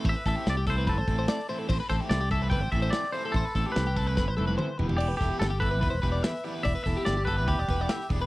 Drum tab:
CC |----------------|x---------------|----------------|x---------------|
HH |o-o-o-o-o-o-o-o-|--o-o-o-o-o-o-o-|o-o-o-o---------|--o-o-o-o-o-o-o-|
SD |--o-o-------oo--|--o-o-------oo--|--o-o---o-------|--o-o-------oo--|
T1 |----------------|----------------|----------oo----|----------------|
T2 |----------------|----------------|------------o---|----------------|
FT |----------------|----------------|--------------oo|----------------|
BD |o-o---o-o-o-----|o-o---o-o-o-----|o-o---o-o-------|--o---o-o-o-----|

CC |----------------|
HH |o-o-o-o-o-o-o-o-|
SD |--o-o-------oo--|
T1 |----------------|
T2 |----------------|
FT |----------------|
BD |o-o---o-o-o---o-|